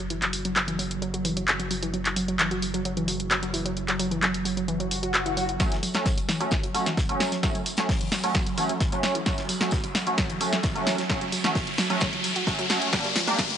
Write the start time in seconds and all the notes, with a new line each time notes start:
Already playing: F#1 F#3, sub drop
0.10 E3, closed hi-hat
0.22 F#3, clap, closed hi-hat
0.33 open hi-hat
0.45 F#3, closed hi-hat
0.56 F#3, clap, closed hi-hat
0.68 E3, closed hi-hat
0.79 F#3, open hi-hat
0.91 closed hi-hat
1.02 F#3, closed hi-hat
1.14 F#3, closed hi-hat
1.25 E3, open hi-hat
1.37 F#3, closed hi-hat
1.48 clap, closed hi-hat
1.59 F#3, closed hi-hat
1.71 F#3, open hi-hat
1.82 E3, closed hi-hat
1.94 F#3, closed hi-hat
2.05 clap, closed hi-hat
2.16 F#3, open hi-hat
2.28 F#3, closed hi-hat
2.39 E3, clap, closed hi-hat
2.51 F#3, closed hi-hat
2.62 open hi-hat
2.74 F#3, closed hi-hat
2.85 F#3, closed hi-hat
2.97 E3, closed hi-hat
3.08 F#3, open hi-hat
3.20 closed hi-hat
3.31 F#3, clap, closed hi-hat
3.43 F#3, closed hi-hat
3.54 E3, open hi-hat
3.66 F#3, closed hi-hat
3.77 closed hi-hat
3.88 F#3, clap, closed hi-hat
3.99 F#3, open hi-hat
4.11 E3, closed hi-hat
4.22 F#3, clap, closed hi-hat
4.34 closed hi-hat
4.45 F#3, open hi-hat
4.57 F#3, closed hi-hat
4.68 E3, closed hi-hat, swell
4.80 F#3, closed hi-hat
4.91 open hi-hat
5.03 F#3, closed hi-hat
5.14 F#3, clap, closed hi-hat
5.26 E3, closed hi-hat
5.37 F#3, open hi-hat
5.49 closed hi-hat
5.60 F#3 A3 C#4, kick, snare, closed hi-hat, tambourine, riser
5.72 E3, snare, closed hi-hat
5.83 F#3, open hi-hat, tambourine
5.94 F#3 A3 C#4, snare, closed hi-hat
6.05 F#3, kick, snare, closed hi-hat, tambourine
6.17 F#3, closed hi-hat
6.29 E3, snare, open hi-hat, tambourine
6.40 F#3 A3 C#4, closed hi-hat
6.51 kick, snare, closed hi-hat, tambourine
6.63 F#3, closed hi-hat
6.74 F#3 A3 C#4, open hi-hat, tambourine
6.86 E3, snare, closed hi-hat
6.97 F#3, kick, snare, closed hi-hat, tambourine
7.09 F#3 A3 C#4, closed hi-hat
7.20 F#3, snare, open hi-hat, tambourine
7.32 F#3, snare, closed hi-hat
7.43 E3 F#3 A3 C#4, kick, snare, closed hi-hat, tambourine
7.55 F#3, closed hi-hat
7.66 open hi-hat, tambourine
7.77 F#3 A3 C#4, snare, closed hi-hat
7.89 F#3, kick, snare, closed hi-hat, open hi-hat
8.01 E3, closed hi-hat
8.12 F#3, snare, open hi-hat, tambourine
8.24 F#3 A3 C#4, closed hi-hat
8.35 F#3, kick, snare, closed hi-hat, tambourine
8.46 F#3, closed hi-hat
8.58 E3 F#3 A3 C#4, open hi-hat, tambourine
8.69 F#3, closed hi-hat
8.80 kick, snare, closed hi-hat, tambourine
8.92 F#3 A3 C#4, closed hi-hat
9.03 F#3, snare, open hi-hat, tambourine
9.15 E3, closed hi-hat
9.26 F#3 A3 C#4, kick, snare, closed hi-hat, tambourine
9.38 snare, closed hi-hat
9.49 F#3, open hi-hat, tambourine
9.61 F#3 A3 C#4, snare, closed hi-hat
9.71 E3, kick, snare, closed hi-hat, tambourine
9.83 F#3, closed hi-hat
9.95 snare, open hi-hat, tambourine
10.07 F#3 A3 C#4, closed hi-hat
10.18 F#3, kick, snare, closed hi-hat, tambourine
10.29 E3, closed hi-hat
10.41 F#3 A3 C#4, open hi-hat, tambourine
10.53 snare, closed hi-hat
10.63 F#3, kick, snare, closed hi-hat, tambourine
10.75 F#3 A3 C#4, closed hi-hat
10.87 E3, snare, open hi-hat, tambourine
10.98 F#3, snare, closed hi-hat
11.09 F#3 A3 C#4, kick, snare, closed hi-hat, tambourine
11.21 F#3, closed hi-hat
11.32 F#3, open hi-hat, tambourine
11.44 E3 F#3 A3 C#4, snare, closed hi-hat
11.55 F#3, kick, snare, closed hi-hat, open hi-hat
11.67 closed hi-hat
11.77 F#3, snare, open hi-hat, tambourine
11.90 F#3 A3 C#4, closed hi-hat
12.00 E3, kick, snare, closed hi-hat, tambourine
12.13 F#3, closed hi-hat
12.24 open hi-hat, tambourine
12.36 F#4, closed hi-hat
12.47 F#3 A3 C#4, kick, snare, closed hi-hat, tambourine
12.59 F#3, closed hi-hat
12.70 F#3 A3 C#4, snare, open hi-hat, tambourine
12.82 closed hi-hat
12.93 G3 A3 A#3 D4, kick, snare, closed hi-hat, tambourine
13.04 G3, snare, closed hi-hat
13.15 F3, snare, open hi-hat, tambourine
13.27 G3 A3 A#3 D4, closed hi-hat, tambourine
13.38 kick, snare, closed hi-hat, tambourine
13.50 A3, closed hi-hat